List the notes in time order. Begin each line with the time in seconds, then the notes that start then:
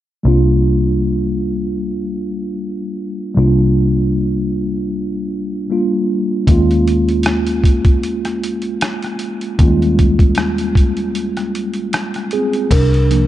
0.23 C2 G3 A#3 D4
0.28 F4
3.35 C2 G3 A#3 D4
3.39 F4
5.70 G3 A#3 D4 F4
6.47 D#2 G#3 A#3 C#4, kick, closed hi-hat
6.51 F4
6.71 closed hi-hat
6.88 closed hi-hat
7.09 closed hi-hat
7.23 cross-stick, closed hi-hat
7.47 closed hi-hat
7.64 kick, closed hi-hat
7.85 kick, closed hi-hat
8.03 closed hi-hat
8.25 cross-stick, closed hi-hat
8.44 closed hi-hat
8.62 closed hi-hat
8.81 cross-stick, closed hi-hat
9.02 cross-stick, closed hi-hat
9.19 closed hi-hat
9.41 closed hi-hat
9.59 D#2 G3 A#3 C#4, kick, closed hi-hat
9.63 G#3 F4
9.82 closed hi-hat
9.99 kick, closed hi-hat
10.19 kick, closed hi-hat
10.35 cross-stick, closed hi-hat
10.58 closed hi-hat
10.75 kick, closed hi-hat
10.97 closed hi-hat
11.15 closed hi-hat
11.37 cross-stick, closed hi-hat
11.55 closed hi-hat
11.74 closed hi-hat
11.93 cross-stick, closed hi-hat
12.14 cross-stick, closed hi-hat
12.31 C4 G#4, closed hi-hat
12.53 closed hi-hat
12.71 C2 D4 A#4, kick, closed hi-hat, crash
12.94 closed hi-hat
13.11 F3 A#3 D4, closed hi-hat